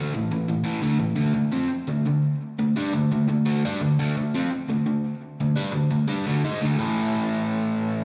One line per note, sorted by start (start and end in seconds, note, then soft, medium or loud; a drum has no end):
0.00 0.12 D3 medium
0.00 0.13 A3 medium
0.14 0.30 A2 medium
0.14 0.30 E3 medium
0.31 0.47 A2 medium
0.31 0.48 E3 medium
0.48 0.63 A2 medium
0.48 0.62 E3 medium
0.64 0.82 A2 medium
0.64 0.81 E3 medium
0.82 0.99 D3 medium
0.82 0.99 A3 loud
1.00 1.15 A2 medium
1.00 1.16 E3 medium
1.16 1.33 D3 medium
1.16 1.33 A3 loud
1.34 1.51 D3 medium
1.34 1.52 A3 medium
1.52 1.69 F3 loud
1.52 1.69 C4 loud
1.70 muted overdriven electric guitar stroke medium
1.88 2.04 D3 medium
1.88 2.05 A3 medium
2.06 2.34 D3 medium
2.06 2.34 A3 medium
2.59 2.76 D3 medium
2.59 2.76 A3 medium
2.76 2.92 G3 medium
2.76 2.93 D4 medium
2.94 3.11 D3 medium
2.94 3.11 A3 medium
3.12 3.27 D3 medium
3.12 3.28 A3 medium
3.29 3.45 D3 medium
3.29 3.45 A3 medium
3.46 3.62 D3 medium
3.46 3.62 A3 medium
3.65 3.81 G3 medium
3.65 3.81 D4 medium
3.81 3.98 D3 medium
3.81 3.98 A3 medium
3.99 4.15 D3 medium
3.99 4.15 A3 medium
4.17 4.34 D3 medium
4.17 4.34 A3 medium
4.34 4.50 F3 medium
4.34 4.51 C4 loud
4.53 muted overdriven electric guitar stroke medium
4.69 4.85 D3 medium
4.69 4.85 A3 medium
4.86 5.14 D3 medium
4.86 5.14 A3 medium
5.41 5.57 D3 medium
5.41 5.56 A3 medium
5.56 5.72 G3 medium
5.56 5.72 D4 medium
5.72 5.90 D3 medium
5.72 5.89 A3 medium
5.91 6.09 D3 medium
5.91 6.07 A3 medium
6.08 6.24 G3 medium
6.08 6.25 D4 medium
6.26 6.42 D3 medium
6.26 6.43 A3 medium
6.44 6.60 G#3 medium
6.44 6.60 D#4 loud
6.62 6.77 D3 medium
6.62 6.78 A3 loud
6.78 8.04 A2 medium
6.78 8.04 E3 medium
6.78 8.04 A3 medium
6.78 8.04 C#4 medium
6.78 8.04 E4 medium